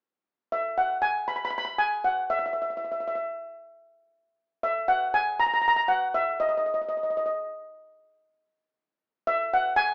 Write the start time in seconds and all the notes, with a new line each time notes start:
0.52 E5
0.78 F#5
1.02 G#5
1.28 B5
1.36 B5
1.45 B5
1.51 B5
1.58 B5
1.65 B5
1.78 G#5
2.04 F#5
2.30 E5
2.39 E5
2.46 E5
2.53 E5
2.62 E5
2.70 E5
2.77 E5
2.84 E5
2.92 E5
3.00 E5
3.08 E5
3.15 E5
4.63 E5
4.88 F#5
5.14 G#5
5.40 A#5
5.47 A#5
5.54 A#5
5.62 A#5
5.68 A#5
5.76 A#5
5.88 F#5
6.14 E5
6.40 D#5
6.49 D#5
6.57 D#5
6.66 D#5
6.74 D#5
6.82 D#5
6.89 D#5
6.97 D#5
7.03 D#5
7.10 D#5
7.17 D#5
7.26 D#5
9.27 E5
9.53 F#5
9.76 G#5